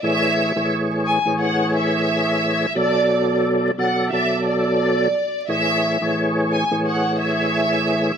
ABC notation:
X:1
M:4/4
L:1/16
Q:"Swing 16ths" 1/4=88
K:A
V:1 name="Violin section"
e4 z2 g z f2 e6 | d4 z2 f z e2 d6 | e4 z2 g z f2 e6 |]
V:2 name="Tonewheel organ"
[A,,E,Gc]3 [A,,E,Gc]4 [A,,E,Gc]8 z | [B,,F,Ad]6 [B,,F,Ad]2 [B,,F,Ad]6 z2 | [A,,E,Gc]3 [A,,E,Gc]4 [A,,E,Gc]8 z |]